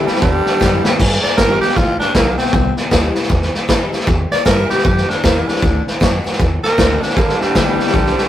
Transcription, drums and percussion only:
0.07 snare
0.15 snare
0.22 kick, snare
0.46 snare
0.61 kick, snare, hi-hat pedal
0.85 snare
1.00 kick, snare, crash
1.12 snare
1.23 snare
1.38 kick, snare, hi-hat pedal
1.62 snare
1.69 snare
1.76 kick, snare
2.00 snare
2.15 kick, snare, hi-hat pedal
2.38 snare
2.46 snare
2.52 kick, snare
2.76 snare
2.91 kick, snare, hi-hat pedal
3.15 snare
3.22 snare
3.30 kick, snare
3.42 snare
3.54 snare
3.69 kick, snare, hi-hat pedal
3.93 snare
4.00 snare
4.07 kick, snare
4.31 snare
4.46 kick, snare, hi-hat pedal
4.70 snare
4.78 snare
4.85 kick, snare
4.97 snare
5.10 snare
5.24 kick, snare, hi-hat pedal
5.48 snare
5.55 snare
5.62 kick, snare
5.87 snare
6.01 kick, snare, hi-hat pedal
6.25 snare
6.32 snare
6.40 kick, snare
6.64 snare
6.78 kick, snare, hi-hat pedal
7.02 snare
7.10 snare
7.17 kick, snare
7.29 snare
7.41 snare
7.55 kick, snare, hi-hat pedal
7.79 snare
7.87 snare
7.94 kick, snare
8.06 snare
8.18 snare

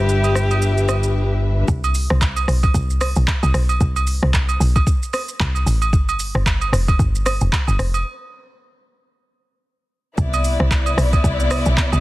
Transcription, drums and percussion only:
0.09 shaker
0.24 high agogo, shaker
0.35 cross-stick, shaker
0.51 high agogo, shaker
0.62 shaker
0.78 shaker
0.89 cross-stick, high agogo, shaker
1.03 shaker
1.68 kick, shaker
1.84 high agogo, shaker
1.95 open hi-hat, shaker
2.10 cross-stick
2.21 kick, clap, low woodblock, shaker
2.36 high agogo, shaker
2.48 cross-stick, open hi-hat, shaker
2.63 kick, high agogo, shaker
2.74 kick, shaker
2.90 shaker
3.01 cross-stick, open hi-hat, high agogo, shaker
3.16 shaker
3.28 kick, clap, low woodblock, shaker
3.43 high agogo, shaker
3.54 cross-stick, open hi-hat, shaker
3.69 high agogo, shaker
3.81 kick, shaker
3.96 high agogo, shaker
4.07 open hi-hat, shaker
4.23 cross-stick
4.34 kick, clap, low woodblock, shaker
4.49 high agogo, shaker
4.61 open hi-hat, shaker
4.76 kick, high agogo, shaker
4.87 kick, shaker
5.03 shaker
5.13 cross-stick, open hi-hat, high agogo, shaker
5.28 shaker
5.40 kick, clap, low woodblock, shaker
5.55 high agogo, shaker
5.67 open hi-hat, shaker
5.82 high agogo, shaker
5.93 kick, shaker
6.09 high agogo, shaker
6.20 open hi-hat, shaker
6.35 cross-stick
6.46 kick, clap, low woodblock, shaker
6.61 high agogo, shaker
6.73 cross-stick, open hi-hat, shaker
6.88 kick, high agogo, shaker
6.99 kick, shaker
7.15 shaker
7.26 cross-stick, open hi-hat, high agogo, shaker
7.41 shaker
7.52 kick, clap, low woodblock, shaker
7.67 high agogo, shaker
7.79 cross-stick, open hi-hat, shaker
7.94 high agogo, shaker
10.18 kick, shaker
10.34 high agogo, shaker
10.44 open hi-hat, shaker
10.60 cross-stick
10.71 kick, clap, low woodblock, shaker
10.86 high agogo, shaker
10.98 cross-stick, open hi-hat, shaker
11.13 kick, high agogo, shaker
11.24 kick, shaker
11.40 shaker
11.51 cross-stick, open hi-hat, high agogo, shaker
11.66 shaker
11.77 kick, clap, low woodblock, shaker
11.92 high agogo, shaker

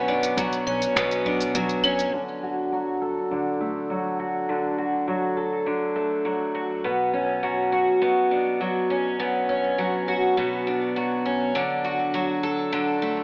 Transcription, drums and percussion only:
0.23 closed hi-hat, shaker
0.37 kick, closed hi-hat, shaker
0.53 closed hi-hat, shaker
0.67 claves
0.82 closed hi-hat, shaker
0.96 finger snap, kick, closed hi-hat, shaker
1.11 closed hi-hat, shaker
1.40 closed hi-hat, shaker
1.55 kick, closed hi-hat, shaker
1.69 closed hi-hat, shaker
1.84 claves
1.99 closed hi-hat, shaker

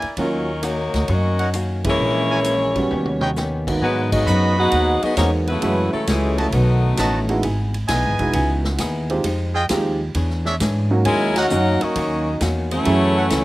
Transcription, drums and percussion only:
0.02 ride
0.17 kick, ride
0.63 hi-hat pedal, ride
0.94 snare, ride
1.08 kick, ride
1.39 ride
1.54 hi-hat pedal, ride
1.84 kick, ride
2.44 hi-hat pedal, ride
2.76 kick, ride
2.91 mid tom
3.06 mid tom
3.21 mid tom
3.36 snare, hi-hat pedal
3.67 kick, crash
3.82 kick
4.12 kick, crash
4.27 hi-hat pedal
4.72 kick, ride
5.02 ride
5.17 kick, snare, hi-hat pedal, ride
5.47 ride
5.62 kick, ride
6.07 kick, snare, hi-hat pedal, ride
6.38 ride
6.52 kick, ride
6.97 kick, snare, hi-hat pedal, ride
7.29 ride
7.43 kick, ride
7.74 ride
7.88 kick, snare, hi-hat pedal, ride
8.19 kick, ride
8.33 kick, ride
8.64 snare
8.78 kick, snare, hi-hat pedal, ride
9.10 ride
9.24 kick, ride
9.69 kick, snare, hi-hat pedal, ride
10.15 kick, ride
10.30 snare
10.45 snare
10.60 kick, snare, hi-hat pedal, ride
11.05 kick, ride
11.36 snare, ride
11.50 hi-hat pedal
11.81 ride
11.96 kick, ride
12.41 kick, snare, hi-hat pedal, ride
12.71 ride
12.85 kick, ride
13.30 kick, snare, hi-hat pedal, ride

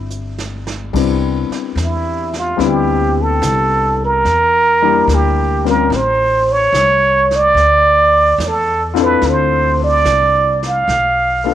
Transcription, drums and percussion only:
0.10 hi-hat pedal
0.38 snare
0.67 snare
0.94 brush sweep, kick, snare, crash
1.52 snare
1.77 snare, hi-hat pedal
2.33 snare
2.60 brush sweep, snare
3.42 snare, hi-hat pedal
4.25 brush sweep, snare
5.09 snare, hi-hat pedal
5.66 snare
5.92 brush sweep, snare
6.74 snare, hi-hat pedal
7.31 snare
7.57 brush sweep, snare
8.40 snare, hi-hat pedal
8.96 snare
9.22 brush sweep, snare
10.05 snare, hi-hat pedal
10.63 snare
10.89 brush sweep, snare

